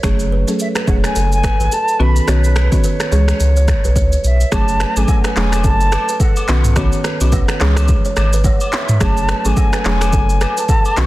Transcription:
0.03 F#1 F#3 A3 C#4 G#4 C#5, finger snap, kick, cross-stick, shaker
0.20 shaker
0.32 B4
0.47 F#3 A3 C#4 G#4 A4, shaker
0.59 E5, shaker
0.75 B4, finger snap, cross-stick, shaker
0.87 E1 F#3 A3 C#4 G#4 C#5 F#5, kick, shaker
1.04 G#5, finger snap, cross-stick, shaker
1.16 F#1 A4, shaker
1.32 G#5, shaker
1.44 B4, finger snap, kick, cross-stick, shaker
1.60 G#1 B4, shaker
1.72 A4 A5, shaker
1.88 shaker
1.99 B1 D#3 B3 C#4 F#4 B4 B5
2.16 shaker
2.27 B1 D#3 B3 C#4 F#4 B4 C#5, finger snap, cross-stick, shaker
2.44 shaker
2.56 B4, finger snap, cross-stick, shaker
2.72 D#3 B3 C#4 F#4 C#5, kick, shaker
2.84 B4, shaker
3.00 finger snap, cross-stick, shaker
3.12 C#2 E3 G#3 C#4 G#4 C#5, shaker
3.28 finger snap, cross-stick, shaker
3.40 C#2, shaker
3.56 C#5, shaker
3.68 finger snap, kick, cross-stick, shaker
3.84 B1 B4, shaker
3.96 C#2 C#5, kick, shaker
4.12 shaker
4.24 B1 E5, shaker
4.41 shaker
4.52 F#1 F#3 A3 C#4 G#4 C#5 A5, finger snap, kick, cross-stick, high agogo, shaker
4.68 shaker
4.80 B4, finger snap, cross-stick, shaker
4.96 G#1 F#3 A3 C#4 G#4 A4 G#5, high agogo, shaker
5.08 kick, low woodblock, shaker
5.24 B4, finger snap, cross-stick, shaker
5.36 E1 F#3 A3 C#4 G#4 C#5 G#5, clap, shaker
5.52 finger snap, cross-stick, high agogo, shaker
5.64 F#1 A4 A5, kick, shaker
5.81 shaker
5.92 B4, finger snap, cross-stick, high agogo, shaker
6.09 B4, shaker
6.20 A4 F#5, kick, low woodblock, shaker
6.36 high agogo, shaker
6.48 B1 D#3 B3 C#4 F#4 B4 F#5, clap, shaker
6.65 mid tom, shaker
6.76 D#3 B3 C#4 F#4 C#5, finger snap, kick, cross-stick, high agogo, shaker
6.92 shaker
7.04 B4, finger snap, cross-stick, shaker
7.20 B1 D#3 B3 C#4 F#4, high agogo, shaker
7.32 B4, kick, low woodblock, shaker
7.48 finger snap, cross-stick, shaker
7.60 C#2 E3 G#3 C#4 G#4 C#5, clap, shaker
7.76 finger snap, cross-stick, high agogo, shaker
7.88 kick, shaker
8.05 C#5, shaker
8.16 G#1, finger snap, cross-stick, high agogo, shaker
8.33 B4, shaker
8.44 C#5, kick, low woodblock, shaker
8.61 high agogo, shaker
8.72 E5, clap, shaker
8.89 mid tom, shaker
9.00 F#1 F#3 A3 C#4 G#4 C#5 A5, finger snap, kick, cross-stick, high agogo, shaker
9.17 shaker
9.29 B4, finger snap, cross-stick, shaker
9.45 G#1 F#3 A3 C#4 G#4 A4 G#5, high agogo, shaker
9.57 kick, low woodblock, shaker
9.73 B4, finger snap, cross-stick, shaker
9.85 E1 F#3 A3 C#4 G#4 C#5 G#5, clap, shaker
10.01 finger snap, cross-stick, high agogo, shaker
10.13 F#1 A4, kick, shaker
10.30 shaker
10.41 B4, finger snap, cross-stick, high agogo, shaker
10.57 B4 A5, shaker
10.69 A4, kick, low woodblock, shaker
10.85 high agogo, shaker
10.97 B1 D#3 B3 C#4 F#4 B4 C#6, clap, shaker

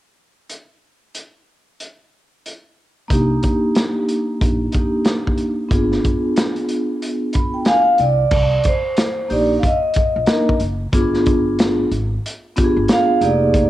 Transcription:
0.50 closed hi-hat
1.15 closed hi-hat
1.80 closed hi-hat
2.46 closed hi-hat
3.08 C2 A#3 D4 D#4 G4, kick, closed hi-hat
3.43 kick, closed hi-hat
3.75 snare, closed hi-hat
4.09 closed hi-hat
4.41 A#1, kick, closed hi-hat
4.72 A#3 D4 D#4 G4, kick, closed hi-hat
5.05 snare, closed hi-hat
5.27 kick
5.37 closed hi-hat
5.69 G1 B3 D4 F4 G#4, kick, closed hi-hat
5.92 snare
6.04 kick, closed hi-hat
6.36 snare, closed hi-hat
6.56 closed hi-hat
6.69 closed hi-hat
7.02 closed hi-hat
7.33 B5, kick, closed hi-hat
7.54 G5
7.65 F5 G#5, snare, closed hi-hat
7.85 G5
7.98 C2 D5 F5, closed hi-hat
8.31 C2, kick, crash
8.64 kick, closed hi-hat
8.68 C5
8.97 snare, closed hi-hat
9.28 A#1 A#3 D4 D#4 G4 D5, open hi-hat
9.59 F5, kick
9.64 D#5, closed hi-hat
9.94 kick, closed hi-hat
10.16 A#1
10.26 A#3 D4 D#4 A#4, snare, closed hi-hat
10.49 kick
10.60 F#1, closed hi-hat
10.93 G1 B3 D4 F4 G#4, kick, closed hi-hat
11.14 snare
11.26 kick, closed hi-hat
11.59 snare, closed hi-hat
11.91 G#1, closed hi-hat
12.26 closed hi-hat
12.56 B3 D4 F4 G4, kick, closed hi-hat
12.64 G#4
12.77 G1
12.88 snare, closed hi-hat
12.93 F5
13.21 F1 A#3 D#4 G4 G#4 D5, closed hi-hat
13.54 kick, closed hi-hat

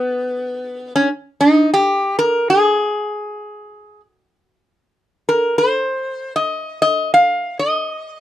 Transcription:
Already playing: B3
0.96 C#4
1.41 D#4
1.74 G4
2.19 A#4
2.50 G#4
5.29 A#4
5.58 C5
6.36 D#5
6.82 D#5
7.14 F5
7.59 D#5

